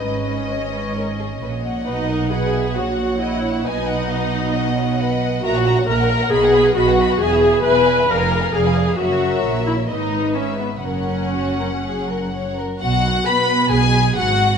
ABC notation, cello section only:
X:1
M:4/4
L:1/8
Q:1/4=133
K:B
V:1 name="Cello section" clef=bass
G,,6 A,,2 | B,,4 A,,4 | B,,8 | A,,2 A,,2 B,,2 B,,2 |
E,,2 E,,2 =F,,2 F,,2 | F,,2 A,,2 G,,4 | F,,6- F,, z | B,,2 B,2 B,,2 G,,2 |]